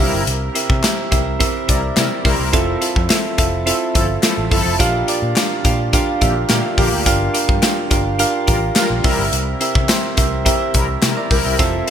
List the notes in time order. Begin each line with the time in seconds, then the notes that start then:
Already playing: C4
0.00 C3 G3 E4 G4 A#4 E5
0.13 G1
0.27 C2, closed hi-hat
0.55 C4 E4 G4 A#4 E5, closed hi-hat
0.70 C3, kick
0.83 C4 E4 G4 A#4 E5, snare, clap, closed hi-hat, tambourine
1.11 C2 C4 E4 G4 A#4 E5, kick, closed hi-hat
1.39 C4 E4 G4 A#4 E5, kick, closed hi-hat
1.68 C2 G3 C4 E4 G4 A#4 D5, kick, closed hi-hat
1.96 C3 G3 C4 E4 G4 A#4 E5, snare, clap, closed hi-hat, tambourine
2.25 C2 G3 C4 E4 G4 A#4 C5, kick, open hi-hat
2.40 C2
2.53 F1 C4 E4 F4 A4 E5, kick, closed hi-hat
2.81 C4 E4 F4 A4 E5, closed hi-hat
2.96 F2, kick
3.09 C4 E4 F4 A4 E5, snare, clap, closed hi-hat, tambourine
3.38 F1 C4 E4 F4 A4 E5, kick, closed hi-hat
3.66 C4 E4 F4 A4 E5, closed hi-hat
3.94 G1 F3 C4 E4 F4 A4 E5, kick, closed hi-hat
4.23 F3 C4 E4 F4 A4 E5, snare, clap, closed hi-hat, tambourine
4.38 A1
4.51 G1 F3 C4 E4 F4 A4 E5, kick, open hi-hat
4.66 F1
4.79 A#1 A#2 D4 F4 G4 A#4 F5, kick, closed hi-hat
5.08 D4 F4 G4 A#4 D5, closed hi-hat
5.22 A#2
5.36 D4 F4 G4 A#4 F5, snare, clap, closed hi-hat, tambourine
5.65 A#2 D4 F4 G4 A#4 F5, kick, closed hi-hat
5.93 D4 F4 G4 A#4 F5, kick, closed hi-hat
6.21 A#1 D3 A#3 D4 F4 G4 A#4 E5, kick, closed hi-hat
6.49 A#2 D3 A#3 D4 F4 G4 A#4 F5, snare, clap, closed hi-hat, tambourine
6.77 A#1 D3 A#3 D4 F4 G4 A#4 F5, kick, open hi-hat
6.93 D2
7.06 G1 G2 D4 F4 G4 A#4 F5, kick, closed hi-hat
7.34 D4 F4 G4 A#4 F5, closed hi-hat
7.49 G2, kick
7.62 D4 F4 G4 A#4 F5, snare, clap, closed hi-hat, tambourine
7.90 G1 D4 F4 G4 A#4 F5, kick, closed hi-hat
8.19 D4 F4 G4 A#4 F5, closed hi-hat
8.47 A1 G3 D4 F4 G4 A#4 F5, kick, closed hi-hat
8.75 G3 D4 F4 G4 A#4 F5, snare, clap, closed hi-hat, tambourine
8.90 A#1
9.04 C2 C3 G3 C4 E4 G4 A#4 E5, kick, open hi-hat
9.18 G1
9.32 C2, closed hi-hat
9.60 C4 E4 G4 A#4 E5, closed hi-hat
9.75 C3, kick
9.89 C4 E4 G4 A#4 C5, snare, clap, closed hi-hat, tambourine
10.17 C2 C4 E4 G4 A#4 E5, kick, closed hi-hat
10.45 C4 E4 G4 A#4 E5, kick, closed hi-hat
10.74 C2 G3 E4 A#4, kick, closed hi-hat
11.02 C3 G3 E4 A#4, snare, clap, closed hi-hat, tambourine
11.17 D5 A#5
11.31 C2 G3 E4 A#4 G5, kick, open hi-hat
11.45 C2 G4 E5
11.59 F1 C4 E4 F4 A4 E5, kick, closed hi-hat